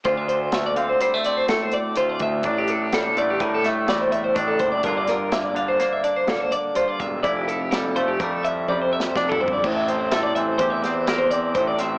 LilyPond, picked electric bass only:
\new Staff \with { instrumentName = "Picked electric bass" } { \clef bass \time 5/4 \key d \minor \tempo 4 = 125 d,2 r2 r8 d,8 | a,,2 a,2 a,,8 fis,,8 | g,,2 r2 r8 e,,8 | f,,2 f,2 f,,8 g,,8 |
a,,2 e,2 a,,4 | }